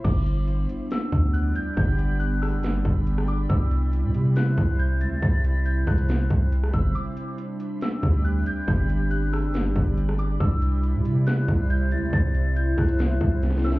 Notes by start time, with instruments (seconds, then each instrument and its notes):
0.04 808-style bass G1, ambient pad G3 B3 D4, synth texture G4 D5 B5, synth bell D6, kick, closed hi-hat, crash
0.26 closed hi-hat
0.48 closed hi-hat
0.69 closed hi-hat
0.91 synth bell E6, snare, closed hi-hat
1.12 808-style bass D2, kick, closed hi-hat
1.33 synth bell F#6, closed hi-hat
1.56 synth bell G6, closed hi-hat
1.77 808-style bass G1, synth bell G6, kick, closed hi-hat
1.99 closed hi-hat
2.19 synth bell F#6, closed hi-hat
2.42 synth bell E6, cross-stick, open hi-hat
2.53 808-style bass F#1
2.63 snare, closed hi-hat
2.69 808-style bass G1
2.85 808-style bass G1, kick, closed hi-hat
3.07 closed hi-hat
3.18 cross-stick
3.28 synth bell D6, closed hi-hat
3.49 808-style bass C2, ambient pad C3 C4 E4, synth texture E4 C5 B5, synth bell E6, kick, closed hi-hat
3.71 closed hi-hat
3.93 closed hi-hat
4.04 808-style bass C3
4.14 closed hi-hat
4.36 synth bell F#6, snare, closed hi-hat
4.57 808-style bass C2, kick, closed hi-hat
4.79 synth bell G6, closed hi-hat
5.01 808-style bass D2, synth bell A6, closed hi-hat
5.12 808-style bass C2
5.22 808-style bass C2, synth bell A6, kick, closed hi-hat
5.44 closed hi-hat
5.66 synth bell G6, closed hi-hat
5.87 808-style bass C2, synth bell F#6, kick, cross-stick, closed hi-hat, open hi-hat
5.98 closed hi-hat
6.09 snare, closed hi-hat
6.30 808-style bass C2, kick, closed hi-hat
6.52 closed hi-hat
6.64 cross-stick
6.73 808-style bass G1, synth bell E6, kick, closed hi-hat
6.95 ambient pad G3 D4, synth texture G4 D5, synth bell D6, closed hi-hat
7.17 closed hi-hat
7.38 closed hi-hat
7.60 closed hi-hat
7.81 synth bell E6, snare, closed hi-hat
8.03 808-style bass D2, kick, closed hi-hat
8.24 synth bell F#6, closed hi-hat
8.46 synth bell G6, closed hi-hat
8.67 808-style bass G1, synth bell G6, kick, closed hi-hat
8.89 closed hi-hat
9.11 synth bell F#6, closed hi-hat
9.33 synth bell E6, cross-stick, open hi-hat
9.43 808-style bass F#1
9.54 snare, closed hi-hat
9.60 808-style bass G1
9.76 808-style bass G1, kick, closed hi-hat
9.97 closed hi-hat
10.09 cross-stick
10.19 synth bell D6, closed hi-hat
10.40 808-style bass C2, ambient pad C3 G3 E4, synth texture E4 C5, synth bell E6, kick, closed hi-hat
10.62 closed hi-hat
10.83 closed hi-hat
10.94 808-style bass C3
11.05 closed hi-hat
11.27 synth bell F#6, snare, closed hi-hat
11.48 808-style bass C2, kick, closed hi-hat
11.70 synth bell G6, closed hi-hat
11.91 808-style bass D2, synth bell A6, closed hi-hat
12.02 808-style bass C2
12.13 808-style bass C2, synth bell A6, kick, closed hi-hat
12.35 closed hi-hat
12.56 synth bell G6, closed hi-hat
12.78 808-style bass C2, synth bell F#6, kick, cross-stick, closed hi-hat, open hi-hat
12.89 closed hi-hat
12.99 snare, closed hi-hat
13.21 808-style bass C2, kick, closed hi-hat
13.43 snare, closed hi-hat
13.51 snare
13.58 snare
13.64 synth bell E6, snare, closed hi-hat
13.72 snare